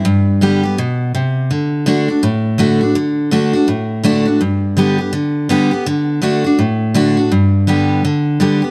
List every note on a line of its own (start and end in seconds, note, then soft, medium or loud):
0.05 0.75 G2 loud
0.41 0.62 D3 medium
0.41 0.63 G3 medium
0.41 0.63 B3 medium
0.41 0.62 G4 loud
0.63 0.78 B3 medium
0.63 0.77 G4 medium
0.78 1.13 B2 medium
1.15 1.49 C3 medium
1.51 1.85 D3 medium
1.86 2.07 D3 medium
1.86 2.08 A3 medium
1.86 2.08 D4 medium
1.86 2.07 F#4 medium
2.08 2.23 D4 soft
2.08 2.22 F#4 medium
2.23 2.93 A2 medium
2.58 2.80 D3 medium
2.58 2.80 A3 medium
2.58 2.80 D4 medium
2.58 2.79 F#4 medium
2.81 2.96 D4 soft
2.81 2.95 F#4 medium
2.95 3.30 D3 medium
3.31 3.53 D3 medium
3.31 3.53 A3 medium
3.31 3.53 D4 medium
3.31 3.52 F#4 medium
3.53 3.68 D4 soft
3.53 3.67 F#4 medium
3.68 4.38 A2 medium
4.04 4.25 D3 medium
4.04 4.25 A3 loud
4.04 4.26 D4 loud
4.04 4.24 F#4 loud
4.25 4.41 D4 soft
4.25 4.40 F#4 medium
4.41 5.10 G2 medium
4.77 4.98 D3 medium
4.77 4.98 G3 medium
4.77 4.99 B3 medium
4.77 4.97 G4 medium
4.98 5.13 B3 soft
4.98 5.12 G4 medium
5.13 5.48 D3 medium
5.49 5.70 D3 loud
5.49 5.71 G3 medium
5.49 5.71 B3 loud
5.49 5.70 G4 medium
5.71 5.86 B3 medium
5.71 5.85 G4 medium
5.86 6.20 D3 medium
6.22 6.43 D3 medium
6.22 6.43 A3 medium
6.22 6.44 D4 loud
6.22 6.43 F#4 medium
6.44 6.59 D4 medium
6.44 6.58 F#4 medium
6.59 7.28 A2 medium
6.94 7.16 D3 medium
6.94 7.16 A3 loud
6.94 7.16 D4 loud
6.94 7.16 F#4 loud
7.17 7.31 D4 soft
7.17 7.30 F#4 medium
7.32 8.01 G2 medium
7.67 8.02 D3 medium
7.67 8.03 G3 medium
7.67 8.03 B3 medium
7.67 8.03 G4 medium
8.05 8.39 D3 medium
8.40 8.61 D3 medium
8.40 8.61 G3 medium
8.40 8.62 B3 loud
8.40 8.61 G4 medium
8.62 8.71 B3 soft
8.62 8.71 G4 medium